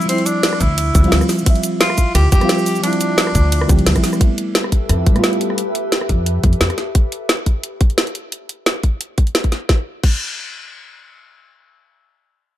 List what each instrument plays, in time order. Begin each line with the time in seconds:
Already playing: fm electric piano F3 G3 C4 E4
0.01 shaker
0.06 fm electric piano F3 G3, tenor saxophone C4, closed hi-hat, ride
0.10 fm electric piano C4 E4
0.18 closed hi-hat
0.26 tenor saxophone D4, closed hi-hat, shaker
0.43 snare, closed hi-hat, ride
0.53 cross-stick
0.60 upright bass D2, tenor saxophone E4, kick, closed hi-hat, shaker
0.78 closed hi-hat, ride
0.95 upright bass D2, kick, closed hi-hat, shaker
1.01 fm electric piano F3 G3, closed hi-hat
1.05 fm electric piano C4 F4
1.12 upright bass D2, snare, closed hi-hat, ride
1.21 cross-stick, shaker
1.29 snare, open hi-hat, shaker
1.38 shaker
1.43 fm electric piano F3 G3, kick, closed hi-hat, ride
1.48 fm electric piano C4 E5
1.56 closed hi-hat
1.63 closed hi-hat, shaker
1.81 tenor saxophone F4, snare, closed hi-hat, ride
1.90 cross-stick
1.98 kick, closed hi-hat, shaker
2.15 upright bass D2, tenor saxophone G4, cross-stick, closed hi-hat, ride
2.32 upright bass F2, tenor saxophone G4, kick, closed hi-hat, shaker
2.38 fm electric piano F3 G3, cross-stick, closed hi-hat
2.43 fm electric piano C4 F4
2.49 snare, closed hi-hat, ride
2.58 shaker
2.66 open hi-hat, shaker
2.76 shaker
2.80 fm electric piano F3 G3, tenor saxophone D4, closed hi-hat, ride
2.85 fm electric piano C4 E4
2.93 closed hi-hat
3.01 closed hi-hat, shaker
3.18 snare, closed hi-hat, ride
3.27 cross-stick
3.35 upright bass D2, kick, closed hi-hat, shaker
3.52 closed hi-hat, ride
3.61 cross-stick
3.68 upright bass D2, fm electric piano F3 G3 C4 G4, kick, closed hi-hat, shaker
3.79 closed hi-hat
3.86 upright bass D2, snare, closed hi-hat, ride
3.94 fm electric piano F3 G3 C4 E4, kick, cross-stick, closed hi-hat, shaker
4.04 snare, open hi-hat, shaker
4.13 cross-stick, shaker
4.17 fm electric piano G3 A3, ambient pad G4 A4 B4 E5, kick, closed hi-hat
4.22 fm electric piano B3 E4
4.38 closed hi-hat
4.55 snare, closed hi-hat
4.64 cross-stick
4.72 kick, closed hi-hat
4.89 upright bass F2, cross-stick, closed hi-hat
5.07 upright bass A2, kick, closed hi-hat
5.12 fm electric piano G3 A3, cross-stick, closed hi-hat
5.17 fm electric piano B3 F4
5.24 snare, closed hi-hat
5.33 closed hi-hat
5.41 closed hi-hat
5.50 cross-stick
5.58 closed hi-hat
5.75 closed hi-hat
5.92 snare, closed hi-hat
6.01 cross-stick
6.09 upright bass F2, kick, closed hi-hat
6.26 closed hi-hat
6.44 upright bass F2, kick, closed hi-hat
6.53 closed hi-hat
6.61 upright bass F2, snare, closed hi-hat
6.70 cross-stick, closed hi-hat
6.78 snare, closed hi-hat
6.95 kick, closed hi-hat
7.12 closed hi-hat
7.29 snare, closed hi-hat
7.46 kick, closed hi-hat
7.63 closed hi-hat
7.81 kick, closed hi-hat
7.90 closed hi-hat
7.98 snare, closed hi-hat
8.07 closed hi-hat
8.15 closed hi-hat
8.32 closed hi-hat
8.49 closed hi-hat
8.66 snare, closed hi-hat
8.83 kick, closed hi-hat
9.01 closed hi-hat
9.18 kick, closed hi-hat
9.27 closed hi-hat
9.35 snare, closed hi-hat
9.44 kick, closed hi-hat
9.52 snare, closed hi-hat
9.69 kick, snare
10.03 kick, crash